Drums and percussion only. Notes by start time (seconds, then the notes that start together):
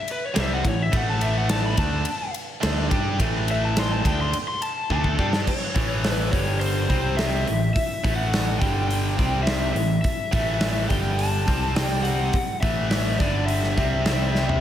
0.08 ride
0.36 snare, ride
0.65 kick, ride
0.93 kick, ride
1.21 ride
1.49 snare, ride
1.77 kick, ride
2.05 ride
2.34 ride
2.63 snare, ride
2.91 kick, ride
3.20 kick, ride
3.48 ride
3.77 snare, ride
4.05 kick, ride
4.33 ride
4.62 ride
4.90 kick
5.04 kick
5.19 kick
5.33 snare
5.47 kick, crash
5.76 kick, open hi-hat
6.04 snare, open hi-hat
6.33 kick, open hi-hat
6.61 open hi-hat
6.90 kick, open hi-hat
7.19 snare, open hi-hat
7.47 open hi-hat
7.76 kick, open hi-hat
8.04 kick, open hi-hat
8.34 snare, open hi-hat
8.62 kick, open hi-hat
8.91 open hi-hat
9.19 kick, open hi-hat
9.47 snare, open hi-hat
9.76 open hi-hat
10.04 kick, open hi-hat
10.33 kick, open hi-hat
10.61 snare, open hi-hat
10.90 kick, open hi-hat
11.19 open hi-hat
11.48 kick, open hi-hat
11.76 snare, open hi-hat
12.05 open hi-hat
12.33 kick, open hi-hat
12.63 kick, open hi-hat
12.91 snare, open hi-hat
13.20 kick, open hi-hat
13.48 open hi-hat
13.63 snare
13.78 kick, open hi-hat
14.06 snare, open hi-hat
14.35 snare
14.49 floor tom